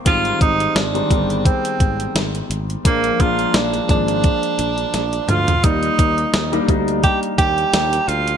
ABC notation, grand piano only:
X:1
M:4/4
L:1/16
Q:"Swing 16ths" 1/4=86
K:Eb
V:1 name="Grand piano"
[E,G,A,C]4 z [E,G,A,C] [E,G,A,_C=C]6 z4 | [F,A,B,D]2 [F,A,B,D]3 z [F,A,B,D]6 z4 | [G,B,Ed]4 z [G,B,DE] [G,B,DE]6 z4 |]